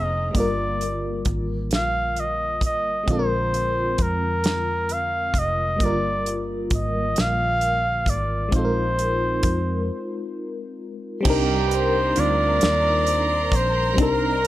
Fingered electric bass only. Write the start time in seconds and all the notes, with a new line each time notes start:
Already playing: F1
0.35 G1
1.27 G#1
1.72 A#1
2.62 G#1
3.09 A#1
3.99 F2
5.34 F1
5.81 G1
6.72 G#1
7.18 A#1
8.07 G#1
8.53 A#1
9.44 F2
11.26 C2
12.18 D2
12.63 D#2
13.52 A#1
13.99 C2